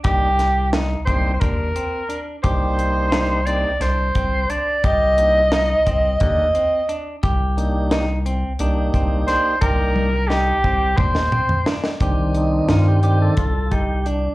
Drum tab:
HH |x-x-x-x-x-x-x-|x-x-x-x-x-x-x-|x-x-x-x-x-x-x-|x-x-x-x-x-x-x-|
SD |--o-o---------|----o---o-----|----o---------|----o-------o-|
T1 |--------------|--------------|--------------|--------------|
T2 |--------------|--------------|--------------|--------------|
FT |--------------|--------------|--------------|--------------|
BD |o-----o-o-----|o---------o---|o-----o-o-----|o---------o---|

HH |x-------------|x-x-x-x-x-x-x-|
SD |----o----o--oo|----o---------|
T1 |--o-----------|--------------|
T2 |--------o-o---|--------------|
FT |-----------o--|--------------|
BD |o-----o-o-----|o-------o-o---|